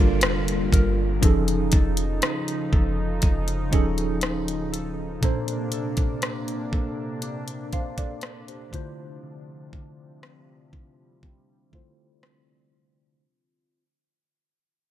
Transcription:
Already playing: 808-style bass G1, analog synth pad D3 G3 A#3 F4, tine electric piano G3 D4 F4 A4 A#4, clean electric guitar G3 F4 A#4 D5, downlifter
0.21 808-style bass F1, clean electric guitar F4, cross-stick, closed hi-hat
0.48 closed hi-hat
0.72 808-style bass G1, clean electric guitar A#4, kick, closed hi-hat
1.20 808-style bass F1, analog synth pad C#3 F3 D#4, tine electric piano F3 C#4 D#4 G#4 A4, clean electric guitar F3, kick, closed hi-hat
1.48 closed hi-hat
1.72 808-style bass F1, clean electric guitar A4, kick, closed hi-hat
1.97 closed hi-hat
2.22 clean electric guitar D#4, cross-stick, closed hi-hat
2.48 closed hi-hat
2.72 808-style bass F1, clean electric guitar A4, kick
3.22 808-style bass F1, clean electric guitar D#4, kick, closed hi-hat
3.48 closed hi-hat
3.71 808-style bass D#1, tine electric piano F3 C#4 D#4 G#4, clean electric guitar C#5, kick, closed hi-hat
3.75 tine electric piano A4
3.98 closed hi-hat
4.21 clean electric guitar D#4, cross-stick, closed hi-hat
4.48 closed hi-hat
4.73 clean electric guitar A4, closed hi-hat
5.21 tine electric piano A#2 A#3 D4 A4, analog synth pad C3 A#3 D4, clean electric guitar A#3, kick, closed hi-hat
5.25 tine electric piano C5
5.48 closed hi-hat
5.72 clean electric guitar A4, closed hi-hat
5.97 kick, closed hi-hat
6.22 clean electric guitar D4, cross-stick, closed hi-hat
6.48 closed hi-hat
6.73 clean electric guitar A4, kick
7.22 clean electric guitar D4, closed hi-hat
7.48 closed hi-hat
7.73 clean electric guitar C5, tine electric piano C5 F5, kick, closed hi-hat
7.98 tine electric piano A4 D5, kick, closed hi-hat
8.21 clean electric guitar D4, cross-stick, closed hi-hat
8.48 tine electric piano G4 C5, closed hi-hat
8.71 analog synth pad C3 F3, tine electric piano D3 A3 E4 F4, clean electric guitar D3, kick, closed hi-hat
8.75 tine electric piano C5
9.23 clean electric guitar D3
9.73 clean electric guitar F4, kick
10.23 clean electric guitar C4, cross-stick
10.73 analog synth pad G3, clean electric guitar F4, kick
11.23 clean electric guitar C4, kick
11.71 tine electric piano D3 A3 E4 F4, clean electric guitar A4, kick
11.75 tine electric piano C5
12.23 clean electric guitar C4, cross-stick
12.73 clean electric guitar F4

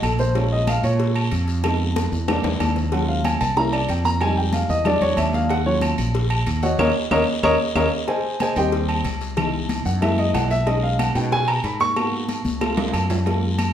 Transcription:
0.02 fretless electric bass A#1, grand piano A4, cowbell, high conga, low agogo, short guiro, claves
0.19 grand piano C5, cowbell, high conga, short guiro
0.35 grand piano G#3 C#4 F4 C#5, cowbell, low agogo, long guiro
0.52 grand piano D#5, high conga
0.67 grand piano F5, cowbell, high conga, low agogo, short guiro, claves
0.83 fretless electric bass A#2, grand piano C#5, high conga, low agogo, short guiro
0.99 cowbell, high conga, long guiro
1.15 high conga, low agogo, claves
1.31 fretless electric bass F2, cowbell, high conga, low agogo, short guiro
1.48 cowbell, short guiro
1.63 grand piano G#3 B3 D#4, cowbell, high bongo, high conga, low agogo, long guiro, claves
1.80 high conga
1.96 cowbell, high bongo, high conga, low agogo, short guiro
2.12 fretless electric bass E2, high conga, short guiro
2.28 grand piano G#3 A#3 D4, cowbell, low bongo, high conga, low conga, low agogo, long guiro, claves
2.43 fretless electric bass E2, low bongo, high conga, low agogo
2.60 fretless electric bass D#2, cowbell, low bongo, high conga, low agogo, short guiro, claves
2.76 cowbell, low bongo, short guiro
2.92 grand piano F#3 G#3 C#4 F4 F#5, cowbell, high conga, low agogo, long guiro
3.08 grand piano F5, high conga
3.24 grand piano G#5, cowbell, high conga, low agogo, short guiro, claves
3.40 fretless electric bass C2, grand piano A5, high conga, low agogo, short guiro
3.56 grand piano A#3 C#4 E4 A#5, cowbell, high conga, long guiro
3.72 grand piano D5, high conga, low agogo, claves
3.89 fretless electric bass F2, grand piano G5, cowbell, high conga, low agogo, short guiro
4.05 grand piano A#5, cowbell, high conga, short guiro
4.21 grand piano G3 G#3 D#4 G#5, cowbell, high conga, low agogo, long guiro, claves
4.37 grand piano G5, high conga
4.53 grand piano F5, cowbell, high conga, low agogo, short guiro
4.69 fretless electric bass E2, grand piano D#5, high conga, short guiro
4.85 grand piano F#3 G#3 D4 D5, cowbell, high conga, low conga, low agogo, long guiro, claves
5.01 fretless electric bass E2, grand piano C#5, high conga, low conga, low agogo
5.17 fretless electric bass D#2, grand piano E5, cowbell, high conga, low agogo, short guiro, claves
5.33 grand piano F5, cowbell, high conga, short guiro
5.49 grand piano F#5, cowbell, high conga, low agogo, long guiro
5.65 grand piano F#3 C#4 F4 C#5, high conga
5.81 cowbell, high conga, low agogo, short guiro, claves
5.98 fretless electric bass A#1, high conga, low agogo, short guiro
6.14 cowbell, high conga, long guiro
6.30 high conga, low agogo, claves
6.46 fretless electric bass D#2, cowbell, high conga, low agogo, short guiro
6.63 grand piano F#4 C#5 D#5 F#5, cowbell, high conga, short guiro
6.79 fretless electric bass D#2, grand piano A#4 C#5 D#5, cowbell, high conga, high timbale, long guiro, claves
7.11 fretless electric bass D#2, grand piano A#4 C#5 D#5, cowbell, high conga, high timbale, long guiro, claves
7.43 fretless electric bass D#2, grand piano A#4 C#5 D#5, cowbell, high conga, high timbale, long guiro, claves
7.75 fretless electric bass D#2, grand piano A#4 C#5 D#5, cowbell, high conga, high timbale, claves
8.08 grand piano G#4 C5 D#5 G#5, cowbell, high conga, low agogo, long guiro
8.24 high conga
8.40 grand piano G#4 C5 D#5 G#5, cowbell, high conga, low agogo, short guiro, claves
8.56 fretless electric bass D#2, grand piano G3 A#3 C4 G4 C5 D#5 G5, high conga, low agogo, short guiro
8.72 cowbell, high conga, long guiro
8.88 high conga, low agogo, claves
9.04 fretless electric bass C#2, cowbell, high conga, low agogo, short guiro
9.21 cowbell, short guiro
9.37 grand piano E3 B3 D#4, cowbell, high conga, low agogo, long guiro, claves
9.54 high conga
9.69 cowbell, high conga, low agogo, short guiro
9.85 fretless electric bass F#2, grand piano F#5, high conga, short guiro
10.01 grand piano G#3 A#3 E4 E5, cowbell, high conga, low conga, low agogo, long guiro, claves
10.18 grand piano D#5, high conga, low agogo
10.34 fretless electric bass B1, grand piano F#5, cowbell, high conga, low timbale, low agogo, short guiro, claves
10.51 grand piano E5, cowbell, short guiro
10.67 grand piano G#3 C#4 D#4 D#5, cowbell, high conga, low agogo, long guiro
10.83 grand piano F5, high conga
10.99 grand piano F#5, cowbell, high conga, low agogo, short guiro, claves
11.15 fretless electric bass B2, grand piano G#3 C#4 D#4 G5, high conga, low agogo, short guiro
11.32 grand piano G#5, cowbell, high conga, long guiro
11.48 grand piano A#5, high conga, low agogo, claves
11.64 fretless electric bass G#2, grand piano B5, cowbell, high conga, low agogo, short guiro
11.80 grand piano C#6, cowbell, high conga, short guiro
11.96 grand piano A#3 B3 F#4, cowbell, high conga, low agogo, long guiro, claves
12.12 high conga
12.29 cowbell, high conga, low agogo, short guiro
12.45 fretless electric bass C#2, high conga, short guiro
12.61 grand piano A3 B3 F4, cowbell, high conga, low agogo, long guiro, claves
12.77 low conga, high timbale, low agogo
12.88 high timbale
12.93 fretless electric bass F#2, cowbell, low agogo, short guiro, claves
13.10 cowbell, low conga, low timbale, short guiro
13.26 grand piano G#3 A#3 F4, cowbell, high conga, low agogo, long guiro
13.43 high conga
13.58 cowbell, high conga, low agogo, short guiro, claves

